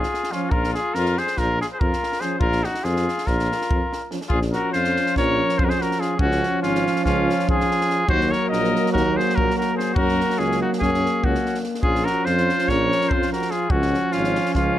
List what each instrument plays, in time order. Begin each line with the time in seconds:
Already playing: trumpet F4 G#4
0.03 snare
0.14 snare
0.23 snare
0.32 trombone F3, trumpet C#4 F4, euphonium C#4, snare
0.50 tuba A#1, trumpet F4 A#4, kick
0.64 snare
0.74 trumpet F4 G#4, snare
0.94 tuba F2, trumpet F4 A#4, snare
1.05 snare
1.17 trumpet G#4 C5, snare
1.27 snare
1.37 tuba A#1, trumpet F4 A#4, kick, snare
1.61 trumpet F4 G#4, snare
1.73 trumpet G#4 C5
1.80 tuba F2, trumpet F4 A#4, kick
1.93 snare
2.03 snare
2.12 snare
2.21 trombone F3, euphonium C#4, trumpet G#4 C5, snare
2.39 tuba A#1, trumpet F4 A#4, kick
2.52 snare
2.63 trumpet D#4 F#4, snare
2.74 snare
2.82 tuba F2, trumpet F4 G#4, snare
2.96 snare
3.08 snare
3.18 snare
3.25 tuba A#1, trumpet F4 A#4, kick, snare
3.39 snare
3.52 snare
3.61 snare
3.71 tuba F2, kick
3.93 snare
4.11 trombone F3, euphonium C#4, snare
4.21 snare
4.28 tuba A#1, trombone F3, euphonium C#4, trumpet F4 G#4, kick
4.42 snare
4.53 trumpet F#4 A#4, snare
4.73 tuba F2, trumpet F4 C5, snare
4.84 snare
4.96 snare
5.06 snare
5.16 tuba A#1, trumpet A#4 C#5, kick, snare
5.49 snare
5.58 tuba F2, trumpet F4 C5, kick
5.65 trumpet F#4 A#4
5.69 trumpet G#4 C5, snare
5.80 trumpet F#4 A#4, snare
5.91 snare
5.99 trumpet F4 G#4, snare
6.17 tuba C#2, trombone F3, trumpet C#4 F#4, euphonium C#4, kick
6.31 snare
6.43 snare
6.61 tuba G#1, trumpet C#4 F4, snare
6.75 snare
6.87 snare
6.96 snare
7.04 tuba C#2, trumpet C#4 F4, kick, snare
7.30 snare
7.39 snare
7.49 tuba G#1, trumpet F4 G#4, kick
7.60 snare
7.71 snare
7.81 snare
7.90 snare
8.08 tuba D#2, trombone F#3, euphonium A#3, trumpet F#4 C5, kick
8.21 snare
8.31 trumpet A#4 C#5, snare
8.49 tuba A#1, trumpet A#4 D#5
8.53 snare
8.64 snare
8.76 snare
8.86 snare
8.93 tuba D#2, trumpet F#4 A#4, kick
8.97 snare
9.17 trumpet G#4 C5, snare
9.29 snare
9.34 tuba A#1, trumpet F#4 A#4, kick
9.50 snare
9.55 trumpet F#4 A#4
9.61 snare
9.75 trumpet G#4 C5
9.80 snare
9.94 tuba F#2, trombone F#3, euphonium A#3, trumpet F#4 A#4, kick
10.08 snare
10.20 snare
10.30 snare
10.38 tuba C#2, trumpet C#4 G#4, snare
10.52 snare
10.61 trumpet D#4 F#4
10.73 snare
10.80 tuba F#2, trumpet C#4 G#4, kick, snare
10.94 snare
11.06 snare
11.24 tuba C#2, trumpet C#4 F#4, kick
11.35 snare
11.46 snare
11.54 snare
11.64 snare
11.74 snare
11.82 tuba A#1, trombone F3, euphonium C#4, trumpet F4 G#4, kick
11.95 snare
12.05 trumpet F#4 A#4, snare
12.25 tuba F2, trumpet F4 C5, snare
12.37 snare
12.49 snare
12.59 snare
12.68 tuba A#1, trumpet A#4 C#5, kick, snare
12.92 snare
13.01 snare
13.09 tuba F2, trumpet C5, kick
13.13 trumpet F4
13.22 snare
13.32 trumpet F#4 A#4, snare
13.42 snare
13.51 trumpet F4 G#4, snare
13.70 tuba C#2, trombone F3, euphonium C#4, trumpet C#4 F#4, kick
13.82 snare
13.94 snare
14.12 tuba G#1, trumpet C#4 F4, snare
14.24 snare
14.35 snare
14.46 snare
14.54 tuba C#2, trumpet C#4 F4, kick, snare